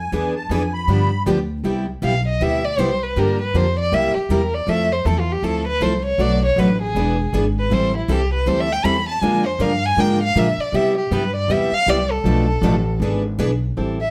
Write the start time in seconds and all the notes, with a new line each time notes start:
Already playing: F2
0.00 G#5
0.12 E2 E3 B3 D4 G#4 B4
0.36 A5
0.49 F2 E3 B3 D4 G#4 B4 G#5
0.74 B5
0.88 G2 D3 F3 B3 D4 G4
1.26 D2 D3 F3 B3 D4 G4
1.64 C2 C3 G3 B3 E4 G4
2.02 B1 C3 G3 B3 E4 G4 F5
2.28 D#5
2.40 D2 C3 G3 B3 E4 G4 E5
2.64 D5
2.78 C2 C3 G3 B3 E4 G4 C5
3.03 B4
3.16 G2 D3 F3 A#3 D4 G4 A#4
3.42 B4
3.54 F2 D3 F3 A#3 D4 G4 C5
3.79 D5
3.92 C2 C3 G3 A#3 E4 G4 E5
4.15 G4, muted upright bass stroke
4.29 E2 C3 G3 A#3 E4 G4 A#4
4.54 D5
4.67 F2 F3 A3 C4 E4 A4 E5
4.92 C5
5.05 E2 F3 A3 C4 E4 A4
5.20 F4
5.32 G4
5.42 D2 F3 A3 C4 E4 A4
5.67 B4
5.80 C2 F3 A3 C4 E4 A4 C5
6.05 C#5
6.18 B1 B2 F#3 A3 D4 F#4 B4 D5
6.45 C#5
6.56 A1 B2 F#3 A3 D4 F#4 B4
6.82 G#4
6.95 E1 E3 B3 D4 G#4 B4
7.33 G#1 E3 B3 D4 G#4 B4
7.59 B4
7.70 A1 E3 G3 C4 E4 A4 C5
7.97 E4
8.08 C2 E3 G3 C4 E4 G4 A4
8.34 B4
8.46 D2 E3 G3 C4 E4 A4 C5
8.61 E5
8.72 G5
8.84 E2 E3 G3 C4 E4 A4 B5
9.09 A5
9.21 F2 D3 F3 G#3 A#3 D4 F4 G#4 A#4 G#5
9.46 C5
9.59 G2 D3 F3 G#3 A#3 D4 F4 G#4 A#4 F5
9.86 G#5
9.97 G#2 D3 F3 G#3 A#3 D4 F4 G#4 A#4 G5
10.23 F5
10.35 A#2 D3 F3 G#3 A#3 D4 F4 G#4 A#4 E5
10.58 D5, muted upright bass stroke
10.72 C3 G3 B3 E4 G4 E5
10.98 G4
11.11 G2 C3 G3 B3 E4 G4 B4
11.36 D5
11.48 E2 C3 G3 B3 E4 G4
11.52 E5
11.72 F5, muted upright bass stroke
11.86 C2 C3 G3 B3 E4 G4 D5
12.11 A4
12.24 B1 B2 F3 A3 D4 A4 B4
12.62 A1 B2 F3 A3 D4 A4 B4
13.00 G#1 E3 B3 D4 G#4 B4
13.39 B1 E3 B3 D4 G#4 B4
13.77 A1 E3 G3 C4 E4 A4
14.01 E5